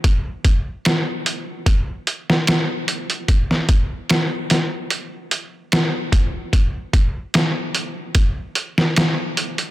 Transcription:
\new DrumStaff \with { instrumentName = "Drums" } \drummode { \time 4/4 \tempo 4 = 74 <hh bd>8 <hh bd>8 <hh sn>8 hh8 <hh bd>8 hh16 sn16 <hh sn>8 hh16 hh16 | <hh bd>16 sn16 <hh bd>8 <hh sn>8 <hh sn>8 hh8 hh8 <hh sn>8 <hh bd>8 | <hh bd>8 <hh bd>8 <hh sn>8 hh8 <hh bd>8 hh16 sn16 <hh sn>8 hh16 hh16 | }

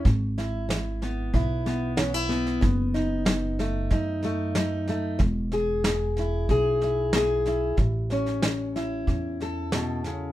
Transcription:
<<
  \new Staff \with { instrumentName = "Steel-string acoustic guitar" } { \time 4/4 \key a \major \tempo 4 = 93 << { r8 e'4 b8 e'8 b8 cis'16 e'16 b8 | r8 dis'4 a8 dis'8 a8 dis'8 a8 | r8 gis'4 e'8 gis'8 e'8 gis'8 e'8 | r8 cis'4 e'4 a'4. | } \\ { gis,4 e4 gis,4 e4 | fis,4 fis4 fis,4 fis4 | e4 b4 b,4 b4 | a,4 e4 a,4 b,8 cis8 | } >> }
  \new Staff \with { instrumentName = "Upright bass" } { \clef bass \time 4/4 \key a \major gis,,2 b,,2 | fis,,2 fis,2 | e,,2 b,,2 | a,,2 e,2 | }
  \new DrumStaff \with { instrumentName = "Drums" } \drummode { \time 4/4 <bd sn>8 sn8 sn8 sn8 <bd sn>8 sn8 sn8 sn16 sn16 | <bd sn>8 sn8 sn8 sn8 <bd sn>8 sn8 sn8 sn8 | <bd sn>8 sn8 sn8 sn8 <bd sn>8 sn8 sn8 sn8 | <bd sn>8 sn16 sn16 sn8 sn8 <bd sn>8 sn8 sn8 sn8 | }
>>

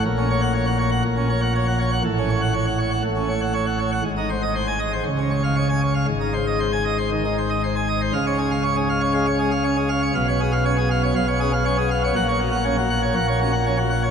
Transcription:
<<
  \new Staff \with { instrumentName = "Pipe organ" } { \time 4/4 \key des \major \tempo 4 = 119 << { r8. ges''16 r2. | r8. ges''16 r2. | r4 r16 aes''16 r4. r16 aes''16 r8 | r4 r16 aes''16 r2 r8 |
f''16 des''16 aes'16 f''16 des''16 aes'16 f''16 des''16 f''16 des''16 aes'16 f''16 des''16 aes'16 f''16 des''16 | f''16 des''16 aes'16 f''16 des''16 aes'16 f''16 des''16 f''16 des''16 aes'16 f''16 des''16 aes'16 f''16 des''16 | ges''16 des''16 ges'16 ges''16 des''16 ges'16 ges''16 des''16 ges''16 des''16 ges'16 ges''16 des''16 ges'16 ges''16 des''16 | } \\ { bes,16 des'16 des''16 r16 des''16 ges''16 des''16 ges''16 bes,16 des'16 des''16 ges''16 des''16 ges''16 des''16 ges''16 | a,16 des'16 des''16 r16 des''16 ges''16 des''16 ges''16 a,16 des'16 des''16 ges''16 des''16 ges''16 des''16 ges''16 | aes,16 ees'16 c''16 ees''16 c''16 r16 ees''16 c''16 des16 des'16 des''16 f''16 des''16 r16 des''16 f''16 | aes,16 ees'16 c''16 ees''16 c''16 r16 ees''16 c''16 ees16 ees'16 c''16 ees''16 c''16 aes''16 ees''16 c''16 |
des4 des'16 r8. aes16 r8. des'16 r8. | ces4 des'16 r8. ces8 des'16 r16 des'16 r8. | bes,4 des'16 r8. bes,8 des'16 r16 des'16 r8. | } >> }
  \new Staff \with { instrumentName = "Pipe organ" } { \clef bass \time 4/4 \key des \major bes,,2 bes,,2 | a,,2 a,,2 | aes,,2 des,2 | aes,,1 |
des,1 | ces,2 ces,2 | bes,,2 bes,,2 | }
>>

